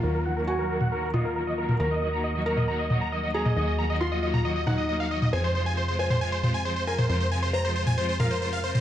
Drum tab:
T2 |-------o--o----o|-------o--o----o|-------o--o----o|-------o--o----o|

T2 |-------o--o----o|